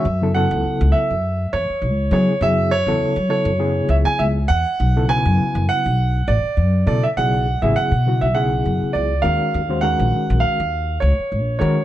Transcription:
X:1
M:4/4
L:1/16
Q:"Swing 16ths" 1/4=101
K:F#dor
V:1 name="Grand piano"
e2 f4 e4 c4 c2 | e2 c4 c4 e g e2 f2- | f2 g4 f4 =d4 d e | f3 e f3 e f4 =d2 ^e2- |
^e2 f4 e4 c4 c2 |]
V:2 name="Reed electric piano"
z [C,F,B,EA] [C,F,B,EA]4- [C,F,B,EA] z6 z [C,F,B,EG] z | [C,F,B,EG]2 z [C,F,B,EA]2 z [C,F,B,EA] z [C,F,B,EG]4- [C,F,B,EG] z3 | z [C,F,B,EA] [C,F,B,EB]4- [C,F,B,EB] z6 z [C,F,B,EA] z | [C,F,B,EG]2 z [C,F,B,EG]2 z [C,F,B,EF] z [C,F,B,EG]4- [C,F,B,EG] z [D,G,CF^A]2 |
z [D,G,CF^B] [D,G,CF^A]4- [D,G,CFA] z6 z [D,G,CFA] z |]
V:3 name="Upright bass" clef=bass
F,,3 C,, z C,, z F,,3 E,, z C,,2 F, z | F,,3 E,, z F,2 F,,3 C,, z C,,2 E,, z | B,,,3 F,, z F,, z B,,,3 A,,, z F,,2 B,, z | B,,,3 A,,, z B,,2 B,,,3 F,, z C,,2 D,, z |
D,,3 ^A,,, z A,,, z D,,3 C,, z A,,,2 D, z |]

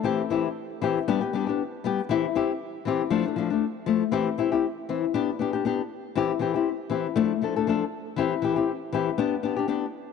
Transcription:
X:1
M:4/4
L:1/16
Q:"Swing 16ths" 1/4=118
K:C
V:1 name="Nylon-string guitar"
[E,CEG] z [E,CEG] z3 [E,CEG] z [G,B,DG] [B,G] [G,B,DG] [B,DG] z2 [G,B,G] z | [E,CEG] z [CEG] z3 [E,CEG] z [F,A,D] [A,D] [F,A,D] [A,D] z2 [F,A,] z | [E,CEG] z [CEG] [CEG] z2 [E,CE] z [B,DG] z [B,DG] [DG] [B,DG] z3 | [E,CEG] z [E,CEG] [CEG] z2 [E,CEG] z [F,A,D] z [F,A,DA] [A,DA] [F,A,DA] z3 |
[E,CEG] z [E,EG] [CEG] z2 [E,CEG] z [B,DG] z [B,DG] [DG] [B,DG] z3 |]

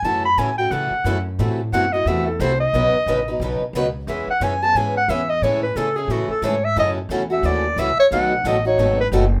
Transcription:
X:1
M:4/4
L:1/16
Q:"Swing" 1/4=178
K:Alyd
V:1 name="Clarinet"
a2 b2 g2 =g2 f6 z2 | z4 f2 d2 e2 A2 =c2 d2- | d8 z8 | e2 f2 g2 a2 g2 f2 e2 d2 |
c2 B2 A2 G2 F2 A2 c2 e2 | d2 z4 e2 =d4 e2 c2 | f4 d2 c4 B2 z4 |]
V:2 name="Steel-string acoustic guitar"
[F,CEA]2 z2 [F,CEA] z3 [F,CEA]2 z2 [F,CEA] z3 | [E,A,=CFA]2 z2 [E,A,CFA] z3 [E,A,CFA]2 z2 [E,A,CFA] z3 | [B,,C,F,B,DB]2 z2 [B,,C,F,B,DB] z3 [B,,C,F,B,DB]2 z2 [B,,C,F,B,DB] z3 | [E,G,CGB]2 z2 [E,G,CGB] z3 [E,G,CGB]2 z2 [E,G,CGB] z3 |
[E,G,CEA]2 z2 [E,G,CEA] z3 [E,G,CEA]2 z2 [E,G,CEA] z3 | [F,CEA]2 z2 [F,CEA] z3 [F,CEA]2 z2 [F,CEA] z3 | [B,,D,F,B,DA]2 z2 [B,,D,F,B,DA] z3 [B,,D,F,B,DA]2 z2 [B,,D,F,B,DA] z3 |]
V:3 name="Steel-string acoustic guitar"
[C,E,A,CF]2 z2 [C,E,A,CF] z [A,CF]2 [C,E,A,CF]2 z2 [C,E,A,CF] z3 | [=C,E,A,EF]2 z2 [C,E,A,EF] z [A,EF]2 [C,E,A,EF]2 z2 [C,E,A,EF] z3 | [B,,C,F,B,DB]2 z2 [B,,C,F,B,DB] z [F,B,DB]2 [B,,C,F,B,DB]2 z2 [B,,C,F,B,DB] z3 | [E,B,CG]2 z2 [E,B,CG] z [B,CG]2 [E,B,CG]2 z2 [E,B,CG] z3 |
[C,E,A,CG]2 z2 [C,E,A,CG] z [A,CG]2 [C,E,A,CG]2 z2 [C,E,A,CG] z3 | [C,E,A,CF]2 z2 [C,E,A,CF] z [A,CF]2 [C,E,A,CF]2 z2 [C,E,A,CF] z3 | [B,,F,A,DF]2 z2 [B,,F,A,DF] z [A,DF]2 [B,,F,A,DF]2 z2 [B,,F,A,DF] z3 |]
V:4 name="Upright bass" clef=bass
F,,4 A,,4 C,2 z2 F,,4 | A,,4 F,,4 E,,4 =C,,4 | B,,,2 z2 A,,,4 B,,,2 z2 C,,4 | E,,2 z2 F,,4 G,,4 E,,4 |
A,,4 C,4 A,,2 z2 G,,4 | F,,4 E,,4 D,,4 C,,2 z2 | B,,,4 A,,,4 G,,,4 F,,,4 |]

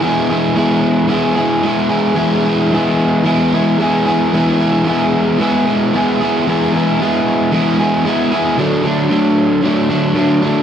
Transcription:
X:1
M:4/4
L:1/8
Q:1/4=113
K:Emix
V:1 name="Overdriven electric guitar"
[E,G,B,EG] [B,EG] [G,B,EG]2 [E,G,B,EG] [B,EG] [G,B,EG] [B,EG] | [E,G,B,EG] [B,EG] [G,B,EG]2 [E,G,B,EG] [B,EG] [G,B,EG] [B,EG] | [E,G,B,EG] [B,EG] [G,B,EG]2 [E,G,B,EG] [B,EG] [G,B,EG] [B,EG] | [E,G,B,EG] [B,EG] [G,B,EG]2 [E,G,B,EG] [B,EG] [G,B,EG] [B,EG] |
[D,F,A,D] [F,A,D] [D,F,A,D]2 [D,F,A,D] [F,A,D] [D,F,A,D] [F,A,D] |]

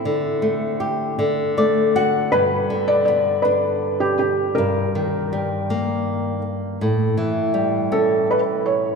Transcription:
X:1
M:6/8
L:1/16
Q:3/8=54
K:Dmix
V:1 name="Felt piano"
A8- A2 z2 | B3 d d2 B3 G G2 | _B8- B2 z2 | z6 A2 B2 ^c2 |]
V:2 name="Nylon-string guitar" clef=bass
D,2 A,2 G2 D,2 [A,d]2 [Ff]2 | G,,2 D,2 B,2 D6 | G,,2 _E,2 G,2 _B,6 | A,,2 E,2 G,2 ^C6 |]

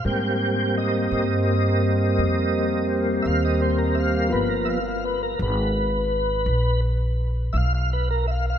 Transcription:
X:1
M:12/8
L:1/16
Q:3/8=56
K:Ablyd
V:1 name="Tonewheel organ"
g4 e12 z2 [=ef] _e c B [=ef] f | =B ^A [=ef] f B A B8 z4 [ef] f B A [ef] f |]
V:2 name="Tonewheel organ"
[G,B,C]24 | [F,^A,=B,]2 z16 z6 |]
V:3 name="Upright bass" clef=bass
A,,6 G,,6 F,,6 E,,6 | G,,,6 A,,,6 ^A,,,6 =B,,,6 |]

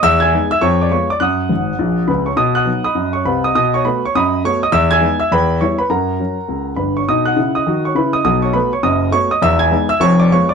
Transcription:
X:1
M:4/4
L:1/8
Q:"Swing" 1/4=205
K:B
V:1 name="Grand piano"
[ee'] [ge'g']2 [ee'] [cc'] [=d=d'] [cc'] [dd'] | [fd'f']6 [Bb] [cc'] | [dd'] [fd'f']2 [dbd']2 [cc'] [Bb] [dd'] | [dd'] [cc'] [Bb] [cc'] [dbd']2 [cc'] [dd'] |
[ee'] [ge'g']2 [ee'] [B=gb]2 [cc'] [Bb] | [Afa]6 [Bb] [cc'] | [dd'] [ff']2 [dd']2 [cc'] [Bb] [dd'] | [dd'] [cc'] [Bb] [cc'] [dd']2 [cc'] [dd'] |
[ee'] [gg']2 [ee'] [cc'] [=d=d'] [cc'] [dd'] |]
V:2 name="Grand piano" clef=bass
E,,2 [G,B,D]2 =F,,2 [_A,_C=F]2 | F,,2 [G,,,G,,]2 [A,,,A,,]2 [C,,C,]2 | B,,2 [F,B,D]2 F,,2 [=C,,=C,]2 | B,,2 [=A,B,F]2 F,,2 [A,B,F]2 |
E,,2 [G,B,D]2 E,,2 [=G,B,E]2 | F,,2 [F,C]2 C,,2 [=G,,,=G,,]2 | [B,,D]2 [C,E]2 [D,F]2 [C,E]2 | [B,,,B,,]2 [=A,B,F]2 [F,,,F,,]2 [A,B,F]2 |
[E,,,E,,]2 [G,B,D]2 [=F,,,=F,,]2 [_A,_C=F]2 |]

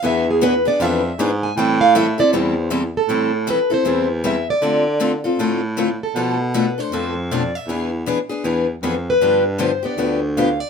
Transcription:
X:1
M:4/4
L:1/16
Q:"Swing" 1/4=157
K:Am
V:1 name="Steel-string acoustic guitar"
e2 ^G2 B2 d2 e4 z2 ^g2 | g2 f2 e2 d2 c4 z2 A2- | A2 z2 B2 c4 z2 e2 d2- | d4 z8 z2 A2- |
A2 z2 B2 c4 z2 d2 e2- | e4 z8 z2 B2- | B2 z2 c2 d4 z2 f2 d2 |]
V:2 name="Steel-string acoustic guitar"
[E,B,D^G]2 z2 [E,B,DG] z [B,DG]2 [E,B,DG]2 z2 [E,B,DG] z3 | [E,G,CEA]2 z2 [E,G,CEA] z [CEA]2 [E,G,CEA]2 z2 [E,G,CEA] z3 | [E,G,CEA]2 z2 [E,G,CEA] z [CEA]2 [E,G,CEA]2 z2 [E,G,CEA] z3 | [D,A,CFA]2 z2 [D,A,CFA] z [CFA]2 [D,A,CFA]2 z2 [D,A,CFA] z3 |
[B,,F,A,DA]2 z2 [B,,F,A,DA] z [A,DA]2 [B,,F,A,DA]2 z2 [B,,F,A,DA] z3 | [E,B,D^G]2 z2 [E,B,DG] z [B,DG]2 [E,B,DG]2 z2 [E,B,DG] z3 | [D,F,B,DG]2 z2 [D,F,B,DG] z [B,DG]2 [D,F,B,DG]2 z2 [D,F,B,DG] z3 |]
V:3 name="Baritone saxophone" clef=bass
E,,8 F,,4 ^G,,4 | A,,8 E,,8 | A,,6 z2 E,,8 | D,8 A,,8 |
B,,8 F,,8 | E,,6 z2 E,,4 F,,4 | G,,8 D,,8 |]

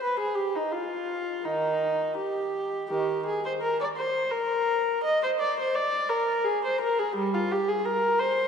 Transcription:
X:1
M:4/4
L:1/16
Q:1/4=85
K:Cm
V:1 name="Viola"
=B A G E F4 [E,E]4 G4 | [E,G]2 A c B d c2 B4 e c d c | d2 B2 A c B A G, F G A B2 c2 |]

